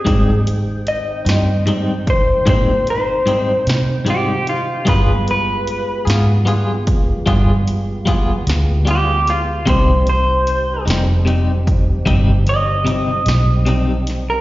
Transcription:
<<
  \new Staff \with { instrumentName = "Clean electric guitar" } { \time 12/8 \key c \minor \tempo 4. = 50 aes'8 r8 ees''4. c''8 c''8 c''4 r8 g'8 f'8 | b'8 b'4 r2. r8 g'8 f'8 | c''8 c''4 r2 ees''2~ ees''16 bes'16 | }
  \new Staff \with { instrumentName = "Tonewheel organ" } { \time 12/8 \key c \minor <ees c' ees' g''>1. | <aes b f' g'>1. | <g c' ees' g'>1. | }
  \new Staff \with { instrumentName = "Clean electric guitar" } { \time 12/8 \key c \minor <aes, g c' ees'>8 r4 <g c' ees'>8 <aes, g c' ees'>8 r8 <aes, g c' ees'>8 r8 <aes, g c' ees'>8 r8 <aes, g c' ees'>8 r8 | <g b f' aes'>8 r4 <b f' aes'>8 <g b f' aes'>8 r8 <g b f' aes'>8 r8 <g b f' aes'>8 r8 <g b f' aes'>8 r8 | <c g c' ees'>8 r4 <g c' ees'>8 <c g c' ees'>8 r8 <c g c' ees'>8 r8 <c g c' ees'>8 r8 <c g c' ees'>8 r8 | }
  \new Staff \with { instrumentName = "Fingered electric bass" } { \clef bass \time 12/8 \key c \minor aes,4. g,4. bes,4. c4. | g,4. aes,4. g,4. d,4. | c,4. f,,4. g,,4. b,,4. | }
  \new DrumStaff \with { instrumentName = "Drums" } \drummode { \time 12/8 <hh bd>8 hh8 hh8 <hh sn>8 hh8 <hh bd>8 <hh bd>8 hh8 hh8 <hh sn>8 hh8 hh8 | <hh bd>8 hh8 hh8 <hh sn>8 hh8 <hh bd>8 <hh bd>8 hh8 <hh bd>8 <hh sn>8 hh8 <hh sn>8 | <hh bd>8 hh8 hh8 <hh sn>8 hh8 <hh bd>8 <hh bd>8 hh8 hh8 <hh sn>8 hh8 <hh sn>8 | }
>>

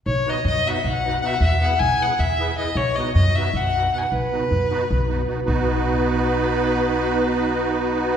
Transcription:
<<
  \new Staff \with { instrumentName = "Violin" } { \time 7/8 \key b \major \tempo 4 = 154 cis''8 dis''8 dis''8 e''32 fis''32 e''16 fis''4 fis''32 e''32 fis''16 | e''8 fis''8 gis''8 fis''8 e''4 dis''8 | cis''8 dis''8 dis''8 e''8 fis''4 fis''32 gis''32 fis''16 | b'2. r8 |
b'2.~ b'8~ | b'2.~ b'8 | }
  \new Staff \with { instrumentName = "Accordion" } { \time 7/8 \key b \major r8 <b dis' fis' b'>8 r8 <b dis' fis' b'>8 r8 <b dis' fis' b'>8 <b dis' fis' b'>8 | r8 <b e' gis' b'>8 r8 <b e' gis' b'>8 r8 <b e' gis' b'>8 <b e' gis' b'>8 | r8 <b dis' fis' b'>8 r8 <b dis' fis' b'>8 r8 <b dis' fis' b'>8 <b dis' fis' b'>8 | r8 <b dis' fis' b'>8 r8 <b dis' fis' b'>8 r8 <b dis' fis' b'>8 <b dis' fis' b'>8 |
<b dis' fis' b'>2.~ <b dis' fis' b'>8~ | <b dis' fis' b'>2.~ <b dis' fis' b'>8 | }
  \new Staff \with { instrumentName = "Upright bass" } { \clef bass \time 7/8 \key b \major b,,4 fis,8 r8 b,,4. | e,4 b,,8 r8 e,4. | b,,4 fis,8 r8 b,,4. | b,,4 fis,8 r8 b,,4. |
b,,2.~ b,,8~ | b,,2.~ b,,8 | }
>>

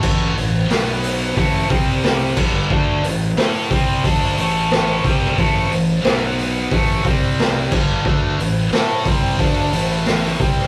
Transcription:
<<
  \new Staff \with { instrumentName = "Distorted electric guitar" } { \clef bass \time 4/4 \key a \dorian \tempo 4 = 90 <a, e a>8 <a, e>8 <b, fis b>4 <a, e a>8 <c g c'>4 <g, d g>8 | <d a d'>8 <a, e>8 <a e' a'>8 <c g c'>8 <d a d'>8 <a, e a>4 <c g c'>8 | <a, e a>8 <a, e>8 <b, fis b>4 <a, e a>8 <c g c'>4 <g, d g>8 | <d a d'>8 <a, e>8 <a e' a'>8 <c g c'>8 <d a d'>8 <a, e a>4 <c g c'>8 | }
  \new Staff \with { instrumentName = "Overdriven electric guitar" } { \clef bass \time 4/4 \key a \dorian <a, e a>8 <a, e>8 <b, fis b>4 <a, e a>8 <c g c'>4 <g, d g>8 | <d a d'>8 <a, e>8 <a e' a'>8 <c g c'>8 <d a d'>8 <a, e a>4 <c g c'>8 | <a, e a>8 <a, e>8 <b, fis b>4 <a, e a>8 <c g c'>4 <g, d g>8 | <d a d'>8 <a, e>8 <a e' a'>8 <c g c'>8 <d a d'>8 <a, e a>4 <c g c'>8 | }
  \new Staff \with { instrumentName = "Fingered electric bass" } { \clef bass \time 4/4 \key a \dorian a,,8 a,,8 b,,4 a,,8 c,4 g,,8 | d,8 a,,8 a,8 c,8 d,8 a,,4 c,8 | a,,8 a,,8 b,,4 a,,8 c,4 g,,8 | d,8 a,,8 a,8 c,8 d,8 a,,4 c,8 | }
  \new DrumStaff \with { instrumentName = "Drums" } \drummode { \time 4/4 <cymc bd>8 hho8 <hho sn>8 hho8 <hho bd>8 <hho bd>8 <hho sn>8 <cymc bd>8 | bd8 hho8 <hho sn>8 <hho bd>8 <hho bd>8 hho8 <hho sn>16 sn16 <hho bd>16 sn16 | <hho bd>8 hho8 <hho sn>8 hho8 <hho bd>8 <hho bd>8 <hho sn>8 <cymc bd>8 | bd8 hho8 <hho sn>8 <hho bd>8 <hho bd>8 hho8 <hho sn>16 sn16 <hho bd>16 sn16 | }
>>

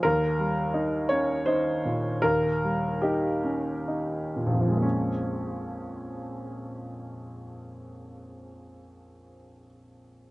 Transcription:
<<
  \new Staff \with { instrumentName = "Grand piano" } { \time 3/4 \key bes \dorian \tempo 4 = 66 bes'4. des''8 c''4 | bes'4 g'4. r8 | <bes,, f, f aes bes des'>2.~ | <bes,, f, f aes bes des'>2. | }
  \new Staff \with { instrumentName = "Grand piano" } { \time 3/4 \key bes \dorian ees,8 g8 ees'8 des'8 ees'8 bes,8 | ees,8 g8 ees'8 des'8 ees'8 bes,8 | r2. | r2. | }
>>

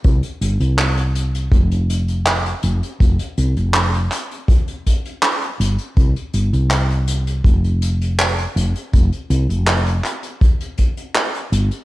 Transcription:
<<
  \new Staff \with { instrumentName = "Fretless electric bass" } { \clef bass \time 4/4 \key f \mixolydian \tempo 4 = 81 c,16 r16 g,,16 c,4~ c,16 f,,4~ f,,16 r16 f,,16 r16 | f,,16 r16 c,16 f,,8. r2 g,,16 r16 | c,16 r16 g,,16 c,4~ c,16 f,,4~ f,,16 r16 f,,16 r16 | f,,16 r16 c,16 f,,8. r2 g,,16 r16 | }
  \new DrumStaff \with { instrumentName = "Drums" } \drummode { \time 4/4 <hh bd>16 hh16 hh16 hh16 <hc hh>16 hh16 hh16 hh16 <hh bd>16 hh16 hh16 hh16 <hc hh>16 hh16 hh16 hh16 | <hh bd>16 hh16 hh16 hh16 <hc hh>16 hh16 <hc hh>16 hh16 <hh bd>16 hh16 <hh bd>16 hh16 <hc hh>16 hh16 hh16 hh16 | <hh bd>16 hh16 hh16 hh16 <hc hh>16 hh16 hh16 hh16 <hh bd>16 hh16 hh16 hh16 <hc hh>16 hh16 hh16 hh16 | <hh bd>16 hh16 hh16 hh16 <hc hh>16 hh16 <hc hh>16 hh16 <hh bd>16 hh16 <hh bd>16 hh16 <hc hh>16 hh16 hh16 hh16 | }
>>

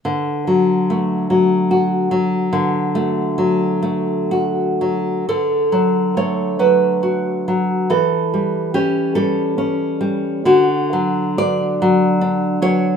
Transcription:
\new Staff \with { instrumentName = "Nylon-string guitar" } { \time 6/8 \key d \major \tempo 4. = 46 << { r2. | r2. | a'4 cis''8 b'4. | a'4 g'8 a'4. |
fis'4 d''4. cis''8 | } \\ { d8 fis8 a8 fis8 fis'8 fis8 | d8 a8 fis8 a8 fis'8 fis8 | d8 fis8 a8 fis8 fis'8 fis8 | e8 g8 cis'8 g8 cis'8 g8 |
d8 fis8 d'8 fis8 d'8 fis8 | } >> }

